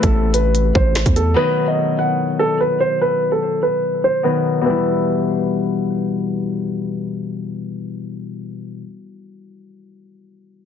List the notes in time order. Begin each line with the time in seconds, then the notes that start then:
Already playing: C3 E3 A3 E4, downlifter
0.03 A1 A4, kick, closed hi-hat
0.34 B4, closed hi-hat
0.55 closed hi-hat
0.75 A1 C5, kick
0.95 finger snap, snare, closed hi-hat
1.06 E2, kick, closed hi-hat
1.16 A4, closed hi-hat
1.34 B2 D#3 F#3 B4
1.38 D#4
1.68 D#5
1.99 F#5
2.39 A4
2.60 B4
2.80 C5
3.01 B4
3.32 A4
3.63 B4
4.04 C5
4.23 B2 D#3 F#3 D#4 B4
4.61 B2 E3
4.66 G3 B4
4.70 E4